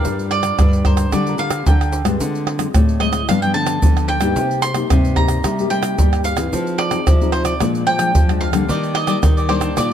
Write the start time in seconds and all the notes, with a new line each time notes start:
Already playing: D4 F4 A#4 F5
0.05 G2 G3, pandeiro, shaker, surdo
0.19 pandeiro, shaker
0.31 D5, pandeiro, tamborim
0.43 D4 F4 A#4, pandeiro, tamborim, shaker
0.59 G2 D3, pandeiro, tamborim, shaker, surdo
0.73 pandeiro, shaker
0.85 D4 F4 A#4 C5, pandeiro, tamborim, surdo
0.97 pandeiro, tamborim, shaker
1.12 D3 G3 D5, pandeiro, tamborim, shaker, surdo
1.27 D4 F4 A#4, pandeiro, shaker
1.38 D3 F5, pandeiro, shaker
1.50 pandeiro, tamborim, shaker
1.66 D3 D4 F4 A#4 G5, pandeiro, shaker, surdo
1.81 pandeiro, tamborim, shaker
1.92 pandeiro, shaker
2.05 G2 G#3 C4 F4, pandeiro, tamborim, shaker
2.20 D3, pandeiro, shaker, surdo
2.35 pandeiro, shaker
2.47 pandeiro, tamborim
2.59 G#3 C4 F4, pandeiro, tamborim, shaker
2.74 A2 D3, pandeiro, tamborim, shaker, surdo
2.89 pandeiro, shaker
3.00 G#3 C4 F4 D#5, pandeiro, tamborim
3.13 pandeiro, tamborim, shaker
3.29 G2 F3 B3 D4 F5, pandeiro, tamborim, shaker, surdo
3.42 F3 B3 D4 G5, pandeiro, shaker
3.54 D3 A5, pandeiro
3.67 pandeiro, tamborim, shaker
3.82 D3 F3 B3 D4, pandeiro, shaker, surdo
3.97 pandeiro, tamborim, shaker
4.08 G5, pandeiro
4.21 G2 A#3 D#4 G4, pandeiro, tamborim, shaker
4.36 C3, pandeiro, shaker, surdo
4.51 pandeiro, shaker
4.62 C6, pandeiro, tamborim, shaker
4.74 A#3 D#4 G4, pandeiro, tamborim, shaker
4.90 G2 C3, pandeiro, tamborim, shaker, surdo
5.05 pandeiro, shaker
5.16 A#3 D#4 G4 A#5, pandeiro, tamborim, surdo
5.28 pandeiro, tamborim, shaker
5.44 C3 G3, pandeiro, tamborim, shaker, surdo
5.59 A#3 D#4 G4, pandeiro, shaker
5.70 G3 G5, pandeiro
5.83 pandeiro, tamborim, shaker
5.98 G2 G3 A#3 D#4 G4, pandeiro, shaker, surdo
6.13 pandeiro, tamborim, shaker
6.24 F5, pandeiro, shaker
6.37 E3 C4 D#4 G#4, pandeiro, tamborim, shaker
6.53 F3, pandeiro, shaker, surdo
6.67 pandeiro, shaker
6.78 D5, pandeiro, tamborim
6.91 C4 D#4 G#4, pandeiro, tamborim, shaker
7.07 C3 F3, pandeiro, tamborim, shaker, surdo
7.21 C4 D#4 G#4, pandeiro, shaker
7.32 C5, pandeiro, tamborim
7.45 D5, pandeiro, tamborim, shaker
7.60 A#2 F3 G#3 D4, pandeiro, tamborim, shaker, surdo
7.75 pandeiro, shaker
7.87 F3 G5, pandeiro
7.99 F3 G#3 D4, pandeiro, tamborim, shaker
8.15 F2 F3, pandeiro, shaker, surdo
8.29 F3 G#3 D4, pandeiro, tamborim, shaker
8.41 F5, pandeiro
8.53 D3 G3 A#3 D4, pandeiro, tamborim, shaker
8.68 D#3 D4 G4 D5 D#5, pandeiro, shaker, surdo
8.83 pandeiro, shaker
8.94 D4 G4 D5 D#5, pandeiro, tamborim
9.07 G3 A#3 D4 G4 D5 D#5, pandeiro, tamborim, shaker
9.23 A#2 D#3, pandeiro, tamborim, shaker, surdo
9.37 G4 D5 D#5, pandeiro, shaker
9.49 G3 A#3 D4 G4 C5 D5 D#5, pandeiro, tamborim
9.61 pandeiro, tamborim, shaker
9.77 A#2 D#3 D4 G4 D5 D#5, pandeiro, tamborim, shaker, surdo